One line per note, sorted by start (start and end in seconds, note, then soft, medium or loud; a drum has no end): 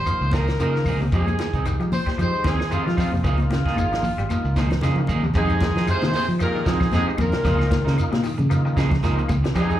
0.00 0.30 C5 loud
0.05 0.27 F3 medium
0.05 0.34 A#3 medium
0.05 0.34 D#4 medium
0.05 0.34 F4 medium
0.05 closed hi-hat medium
0.05 claves medium
0.05 shekere loud
0.21 0.56 C#2 medium
0.21 muted clean electric guitar stroke soft
0.21 shekere soft
0.31 0.54 D#3 medium
0.31 0.48 F3 medium
0.31 0.48 A#3 medium
0.31 0.48 D#4 medium
0.31 0.47 G#4 medium
0.31 0.60 A#4 medium
0.31 kick medium
0.31 snare medium
0.31 closed hi-hat soft
0.31 high conga medium
0.31 low conga medium
0.31 shekere medium
0.47 muted clean electric guitar stroke soft
0.47 snare medium
0.47 closed hi-hat soft
0.47 claves medium
0.47 shekere soft
0.59 0.88 C#3 medium
0.59 0.71 F3 medium
0.59 0.75 F3 medium
0.59 0.87 A#3 medium
0.59 0.75 A#3 medium
0.59 0.88 D#4 medium
0.59 0.74 D#4 medium
0.59 0.88 F4 medium
0.59 0.74 G#4 medium
0.59 0.99 A#4 medium
0.59 closed hi-hat medium
0.59 shekere medium
0.74 0.96 D#3 medium
0.74 muted clean electric guitar stroke soft
0.74 snare soft
0.74 shekere soft
0.85 1.10 C#2 medium
0.85 1.02 F3 medium
0.85 1.01 A#3 medium
0.85 1.01 D#4 medium
0.85 1.01 G#4 medium
0.85 kick medium
0.85 open hi-hat medium
0.85 low conga medium
0.85 claves medium
0.85 shekere medium
1.00 1.10 C3 medium
1.00 muted clean electric guitar stroke soft
1.00 high conga medium
1.00 shekere soft
1.12 1.37 F2 medium
1.12 1.33 F3 medium
1.12 1.28 F3 medium
1.12 1.40 G#3 medium
1.12 1.28 C4 medium
1.12 1.41 D#4 medium
1.12 1.28 D#4 medium
1.12 1.41 G4 medium
1.12 1.63 G#4 medium
1.12 1.27 G#4 medium
1.12 kick medium
1.12 closed hi-hat medium
1.12 shekere medium
1.26 muted clean electric guitar stroke soft
1.26 closed hi-hat soft
1.26 high conga medium
1.26 claves medium
1.26 shekere soft
1.39 1.60 D#3 medium
1.39 muted clean electric guitar stroke soft
1.39 snare medium
1.39 closed hi-hat medium
1.39 high conga medium
1.39 shekere medium
1.53 1.78 C2 medium
1.53 1.65 C4 soft
1.53 1.65 D#4 soft
1.53 1.66 G#4 soft
1.53 kick medium
1.53 closed hi-hat soft
1.53 shekere soft
1.65 1.77 D#3 medium
1.65 1.93 G#3 medium
1.65 1.93 D#4 medium
1.65 1.94 G4 medium
1.65 muted clean electric guitar stroke soft
1.65 closed hi-hat medium
1.65 claves medium
1.65 shekere medium
1.79 2.04 F3 medium
1.79 2.01 F3 medium
1.79 closed hi-hat soft
1.79 shekere soft
1.92 2.17 C5 loud
1.92 muted clean electric guitar stroke soft
1.92 open hi-hat medium
1.92 high conga medium
1.92 low conga medium
1.92 shekere medium
2.06 2.16 G3 medium
2.06 kick medium
2.06 snare soft
2.06 closed hi-hat soft
2.06 high conga medium
2.06 shekere soft
2.18 2.39 F3 medium
2.18 2.32 F3 medium
2.18 2.46 G#3 medium
2.18 2.46 D#4 medium
2.18 2.47 G4 medium
2.18 2.44 C5 loud
2.18 closed hi-hat medium
2.18 claves medium
2.18 shekere medium
2.33 muted clean electric guitar stroke soft
2.33 shekere soft
2.44 2.58 D#2 medium
2.44 2.65 D#3 medium
2.44 2.59 F3 medium
2.44 2.60 C4 medium
2.44 2.59 D#4 medium
2.44 2.59 G#4 medium
2.44 2.71 G#4 medium
2.44 kick medium
2.44 snare medium
2.44 closed hi-hat soft
2.44 high conga medium
2.44 shekere medium
2.60 muted clean electric guitar stroke soft
2.60 snare medium
2.60 claves medium
2.60 shekere soft
2.71 2.83 D#3 medium
2.71 2.86 F3 medium
2.71 2.99 G#3 medium
2.71 2.85 C4 medium
2.71 2.84 D#4 medium
2.71 2.99 D#4 medium
2.71 2.97 F4 medium
2.71 3.00 G4 medium
2.71 2.84 G#4 medium
2.71 muted fingered electric bass stroke soft
2.71 closed hi-hat medium
2.71 shekere medium
2.85 3.07 D#3 medium
2.85 3.11 F3 loud
2.85 muted clean electric guitar stroke soft
2.85 snare soft
2.85 closed hi-hat soft
2.85 shekere soft
2.97 3.12 C4 medium
2.97 3.12 D#4 medium
2.97 3.11 F4 medium
2.97 3.11 G#4 medium
2.97 muted clean electric guitar stroke medium
2.97 kick medium
2.97 snare soft
2.97 open hi-hat medium
2.97 low conga medium
2.97 claves medium
2.97 shekere medium
3.12 3.24 F2 medium
3.12 3.22 C3 medium
3.12 muted clean electric guitar stroke soft
3.12 high conga medium
3.12 shekere soft
3.24 3.49 C#2 loud
3.24 3.39 F3 medium
3.24 3.45 F3 medium
3.24 3.37 A#3 medium
3.24 3.52 A#3 medium
3.24 3.37 D#4 medium
3.24 3.52 D#4 medium
3.24 3.52 F4 medium
3.24 4.80 F4 medium
3.24 3.37 G#4 medium
3.24 kick medium
3.24 closed hi-hat medium
3.24 shekere medium
3.38 muted clean electric guitar stroke soft
3.38 closed hi-hat soft
3.38 high conga medium
3.38 claves medium
3.38 shekere soft
3.50 3.64 C#3 medium
3.50 3.71 D#3 medium
3.50 muted clean electric guitar stroke soft
3.50 snare medium
3.50 closed hi-hat soft
3.50 high conga medium
3.50 shekere medium
3.66 3.77 A#3 soft
3.66 3.77 D#4 soft
3.66 3.77 G#4 medium
3.66 kick medium
3.66 snare soft
3.66 shekere soft
3.76 4.15 G#1 medium
3.76 3.88 D#3 medium
3.76 4.05 A#3 medium
3.76 4.05 D#4 medium
3.76 4.05 G#4 medium
3.76 muted clean electric guitar stroke soft
3.76 closed hi-hat medium
3.76 high conga medium
3.76 claves medium
3.76 shekere medium
3.92 4.12 F3 medium
3.92 snare medium
3.92 closed hi-hat soft
3.92 shekere soft
4.03 muted clean electric guitar stroke soft
4.03 open hi-hat medium
4.03 high conga medium
4.03 low conga medium
4.03 shekere medium
4.18 4.29 G#1 medium
4.18 4.27 G3 medium
4.18 closed hi-hat soft
4.18 shekere soft
4.29 4.57 A#3 medium
4.29 4.58 D#4 medium
4.29 4.58 F4 medium
4.29 muted clean electric guitar stroke medium
4.29 closed hi-hat medium
4.29 high conga medium
4.29 claves medium
4.29 shekere medium
4.44 4.79 C#2 medium
4.44 muted clean electric guitar stroke soft
4.44 shekere soft
4.56 4.77 D#3 medium
4.56 4.71 F3 medium
4.56 4.70 A#3 medium
4.56 4.70 D#4 medium
4.56 4.70 G#4 medium
4.56 kick medium
4.56 snare medium
4.56 closed hi-hat medium
4.56 high conga medium
4.56 shekere medium
4.70 muted clean electric guitar stroke soft
4.70 snare medium
4.70 closed hi-hat soft
4.70 low conga medium
4.70 claves medium
4.70 shekere soft
4.81 5.11 C#3 medium
4.81 4.97 F3 medium
4.81 4.94 F3 medium
4.81 4.96 A#3 medium
4.81 5.10 A#3 medium
4.81 4.96 D#4 medium
4.81 5.11 D#4 medium
4.81 5.11 F4 loud
4.81 4.96 G#4 medium
4.81 snare soft
4.81 closed hi-hat medium
4.81 low conga medium
4.81 shekere medium
4.96 5.18 D#3 medium
4.96 muted clean electric guitar stroke soft
4.96 low conga medium
4.96 shekere soft
5.07 5.33 D#2 medium
5.07 5.23 A#3 medium
5.07 5.22 D#4 medium
5.07 5.22 G#4 medium
5.07 muted clean electric guitar stroke medium
5.07 kick medium
5.07 closed hi-hat medium
5.07 low conga medium
5.07 claves medium
5.07 shekere medium
5.22 5.33 C3 medium
5.22 muted clean electric guitar stroke soft
5.22 low conga medium
5.22 shekere soft
5.34 5.73 F2 loud
5.34 5.84 G#2 medium
5.34 5.56 F3 medium
5.34 5.63 G#3 medium
5.34 5.52 C4 medium
5.34 5.53 D#4 loud
5.34 5.63 D#4 medium
5.34 5.85 D#4 medium
5.34 5.63 G4 loud
5.34 5.53 G#4 medium
5.34 5.85 G#4 loud
5.34 kick medium
5.34 closed hi-hat medium
5.34 high conga soft
5.34 low conga medium
5.34 shekere medium
5.48 closed hi-hat soft
5.48 claves medium
5.48 shekere soft
5.61 5.82 D#3 medium
5.61 muted clean electric guitar stroke soft
5.61 kick medium
5.61 snare medium
5.61 closed hi-hat medium
5.61 high conga medium
5.61 shekere medium
5.75 5.86 F3 loud
5.75 5.87 D#4 soft
5.75 5.87 G#4 medium
5.75 snare medium
5.75 closed hi-hat soft
5.75 shekere soft
5.87 6.13 C3 medium
5.87 6.15 G#3 medium
5.87 6.15 D#4 medium
5.87 6.16 F4 medium
5.87 6.13 G#4 medium
5.87 6.13 C5 loud
5.87 muted clean electric guitar stroke soft
5.87 closed hi-hat medium
5.87 high conga soft
5.87 claves medium
5.87 shekere medium
6.02 6.12 C3 medium
6.02 6.13 D#3 medium
6.02 muted clean electric guitar stroke medium
6.02 snare medium
6.02 closed hi-hat soft
6.02 high conga medium
6.02 shekere soft
6.13 6.27 C3 medium
6.13 6.34 D#3 medium
6.13 6.26 G#4 medium
6.13 6.27 C5 loud
6.13 open hi-hat medium
6.13 high conga medium
6.13 shekere medium
6.28 6.63 F3 medium
6.28 muted clean electric guitar stroke soft
6.28 shekere soft
6.39 6.66 A#2 medium
6.39 6.51 F3 medium
6.39 6.67 G#3 medium
6.39 6.67 D#4 medium
6.39 6.66 F4 medium
6.39 6.68 G4 medium
6.39 6.66 A#4 loud
6.39 closed hi-hat medium
6.39 high conga soft
6.39 claves medium
6.39 shekere medium
6.54 6.64 D#3 medium
6.54 muted clean electric guitar stroke soft
6.54 shekere soft
6.65 6.92 G#2 medium
6.65 6.91 F3 medium
6.65 6.87 F3 medium
6.65 6.81 C4 medium
6.65 6.81 D#4 medium
6.65 6.93 D#4 medium
6.65 6.92 G#4 medium
6.65 kick medium
6.65 snare medium
6.65 closed hi-hat medium
6.65 shekere medium
6.80 muted clean electric guitar stroke soft
6.80 kick medium
6.80 snare soft
6.80 low conga medium
6.80 claves medium
6.80 shekere soft
6.92 7.06 F2 medium
6.92 7.06 G#2 medium
6.92 7.20 G#3 medium
6.92 7.10 C4 medium
6.92 7.10 D#4 medium
6.92 7.21 D#4 medium
6.92 7.06 D#4 medium
6.92 7.21 G4 medium
6.92 7.10 G#4 medium
6.92 7.06 G#4 medium
6.92 snare soft
6.92 closed hi-hat medium
6.92 high conga medium
6.92 shekere loud
7.07 7.16 F3 medium
7.07 shekere soft
7.18 7.32 F2 medium
7.18 7.95 A#2 medium
7.18 7.30 D#3 medium
7.18 7.95 A#4 medium
7.18 muted clean electric guitar stroke soft
7.18 kick medium
7.18 closed hi-hat soft
7.18 high conga loud
7.18 claves medium
7.18 shekere medium
7.22 7.95 F4 medium
7.32 7.43 C3 medium
7.32 muted clean electric guitar stroke soft
7.32 snare medium
7.32 closed hi-hat soft
7.32 shekere soft
7.44 7.82 C#2 loud
7.44 7.62 F3 medium
7.44 7.65 F3 medium
7.44 7.62 A#3 medium
7.44 7.73 A#3 medium
7.44 7.62 D#4 medium
7.44 7.73 D#4 medium
7.44 7.74 F4 loud
7.44 7.62 G#4 medium
7.44 kick medium
7.44 snare soft
7.44 closed hi-hat medium
7.44 high conga soft
7.44 low conga medium
7.44 shekere medium
7.59 snare soft
7.59 claves medium
7.59 shekere soft
7.70 7.92 D#3 medium
7.70 muted clean electric guitar stroke soft
7.70 kick medium
7.70 snare medium
7.70 closed hi-hat medium
7.70 high conga loud
7.70 shekere medium
7.85 7.97 C#3 loud
7.85 7.96 A#3 soft
7.85 7.96 D#4 medium
7.85 snare medium
7.85 shekere soft
7.96 8.26 A#3 loud
7.96 8.26 D#4 loud
7.96 8.26 F4 loud
7.96 muted clean electric guitar stroke soft
7.96 closed hi-hat medium
7.96 high conga soft
7.96 claves medium
7.96 shekere medium
8.12 8.23 A#2 medium
8.12 8.21 C3 medium
8.12 muted clean electric guitar stroke soft
8.12 snare medium
8.12 closed hi-hat soft
8.12 high conga medium
8.12 shekere soft
8.23 8.44 D#3 medium
8.23 open hi-hat medium
8.23 shekere medium
8.38 8.74 C#3 medium
8.38 muted clean electric guitar stroke medium
8.38 closed hi-hat soft
8.38 high conga medium
8.38 low conga medium
8.38 shekere soft
8.50 8.62 F3 medium
8.50 8.77 A#3 medium
8.50 8.78 D#4 medium
8.50 8.78 F4 loud
8.50 closed hi-hat medium
8.50 claves medium
8.50 shekere medium
8.65 8.74 D#3 medium
8.65 muted clean electric guitar stroke soft
8.65 shekere soft
8.77 9.01 C#3 loud
8.77 8.91 F3 medium
8.77 8.97 F3 medium
8.77 8.91 A#3 medium
8.77 8.91 D#4 medium
8.77 8.91 G#4 medium
8.77 kick medium
8.77 snare medium
8.77 closed hi-hat medium
8.77 shekere medium
8.90 muted clean electric guitar stroke soft
8.90 kick medium
8.90 snare soft
8.90 closed hi-hat soft
8.90 low conga medium
8.90 claves medium
8.90 shekere soft
9.03 9.17 C#2 medium
9.03 9.20 F3 loud
9.03 9.20 A#3 medium
9.03 9.31 A#3 medium
9.03 9.20 D#4 medium
9.03 9.31 D#4 medium
9.03 9.31 F4 loud
9.03 9.20 G#4 medium
9.03 snare soft
9.03 closed hi-hat medium
9.03 high conga medium
9.03 shekere medium
9.18 9.27 F3 medium
9.18 closed hi-hat soft
9.18 shekere soft
9.28 9.43 C#2 medium
9.28 9.41 D#3 medium
9.28 muted clean electric guitar stroke soft
9.28 kick medium
9.28 closed hi-hat medium
9.28 high conga medium
9.28 claves medium
9.28 shekere medium
9.44 9.53 C3 medium
9.44 muted clean electric guitar stroke soft
9.44 snare medium
9.44 closed hi-hat soft
9.44 shekere soft
9.55 9.80 F2 loud
9.55 9.80 G#2 medium
9.55 9.76 F3 loud
9.55 9.80 G#3 medium
9.55 9.72 C4 medium
9.55 9.72 D#4 medium
9.55 9.80 D#4 medium
9.55 9.80 G4 medium
9.55 9.80 G#4 medium
9.55 9.73 G#4 medium
9.55 kick medium
9.55 snare soft
9.55 closed hi-hat medium
9.55 high conga soft
9.55 low conga medium
9.55 shekere medium
9.69 closed hi-hat soft
9.69 claves medium
9.69 shekere soft